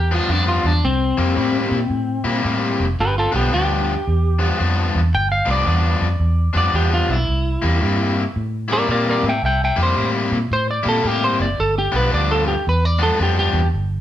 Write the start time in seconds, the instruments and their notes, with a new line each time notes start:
Already playing: fingered electric bass E2, clean electric guitar G4
0.11 overdriven electric guitar G2 F3 B3 D4, clean electric guitar F4
0.29 fingered electric bass F2, overdriven electric guitar G2 F3 B3 D4, clean electric guitar D4
0.48 clean electric guitar F4
0.64 fingered electric bass E2, clean electric guitar D4
0.84 fingered electric bass C2, clean electric guitar C4
1.17 fingered electric bass F2, overdriven electric guitar C3 G3 A#3 E4
1.36 fingered electric bass A2, overdriven electric guitar C3 G3 A#3 E4
1.71 fingered electric bass A#2
1.90 fingered electric bass A2
2.24 fingered electric bass A#2, overdriven electric guitar C3 G3 A#3 E4
2.43 fingered electric bass A2, overdriven electric guitar C3 G3 A#3 E4
2.80 fingered electric bass F1
2.99 fingered electric bass G1, clean electric guitar G4 B4
3.18 clean electric guitar F4 A4
3.32 fingered electric bass B1, overdriven electric guitar G2 F3 B3 D4, clean electric guitar G4
3.36 clean electric guitar B3
3.52 fingered electric bass D2, overdriven electric guitar G2 F3 B3 D4, clean electric guitar G4
4.07 fingered electric bass E2
4.39 overdriven electric guitar G2 F3 B3 D4
4.58 fingered electric bass F2, overdriven electric guitar G2 F3 B3 D4
4.95 fingered electric bass E2
5.13 fingered electric bass G1, clean electric guitar G5
5.32 clean electric guitar F5
5.46 fingered electric bass C2, overdriven electric guitar G2 F3 B3 D4
5.51 clean electric guitar D5
5.65 fingered electric bass E2, overdriven electric guitar G2 F3 B3 D4
6.01 fingered electric bass F2
6.20 fingered electric bass E2
6.53 fingered electric bass F2, overdriven electric guitar G2 F3 B3 D4
6.57 clean electric guitar D5
6.73 fingered electric bass E2, overdriven electric guitar G2 F3 B3 D4, clean electric guitar G4
6.94 clean electric guitar F4
7.09 fingered electric bass B1, clean electric guitar E4
7.29 fingered electric bass C2
7.62 fingered electric bass E2, overdriven electric guitar C3 G3 A#3 E4
7.81 fingered electric bass G2, overdriven electric guitar C3 G3 A#3 E4
8.36 fingered electric bass A2
8.68 overdriven electric guitar C3 G3 A#3 E4
8.72 clean electric guitar A#4 D5
8.88 fingered electric bass A#2, overdriven electric guitar C3 G3 A#3 E4, clean electric guitar A#4 D5
9.09 clean electric guitar A#4 D5
9.23 fingered electric bass A2
9.29 clean electric guitar E5 G5
9.42 fingered electric bass C2, clean electric guitar E5 G5
9.64 clean electric guitar E5 G5
9.76 fingered electric bass F2, overdriven electric guitar C3 G3 A#3 E4
9.83 clean electric guitar C5
9.95 fingered electric bass A2, overdriven electric guitar C3 G3 A#3 E4
10.32 fingered electric bass A#2
10.51 fingered electric bass A2, clean electric guitar C5
10.71 clean electric guitar D5
10.83 fingered electric bass A#2, overdriven electric guitar C3 G3 A#3 E4
10.89 clean electric guitar A4
11.03 fingered electric bass A2, overdriven electric guitar C3 G3 A#3 E4
11.07 clean electric guitar G4
11.24 clean electric guitar C5
11.40 fingered electric bass F#1, clean electric guitar D5
11.59 fingered electric bass G1, clean electric guitar A4
11.79 clean electric guitar G4
11.92 fingered electric bass B1, overdriven electric guitar G2 F3 B3 D4
11.96 clean electric guitar B4
12.11 fingered electric bass D2, overdriven electric guitar G2 F3 B3 D4, clean electric guitar D5
12.31 clean electric guitar A4
12.48 clean electric guitar G4
12.67 fingered electric bass E2, clean electric guitar B4
12.85 clean electric guitar D5
12.99 overdriven electric guitar G2 F3 B3 D4
13.03 clean electric guitar A4
13.18 fingered electric bass F2, overdriven electric guitar G2 F3 B3 D4
13.23 clean electric guitar G4
13.39 clean electric guitar G4
13.53 fingered electric bass E2
13.74 fingered electric bass G1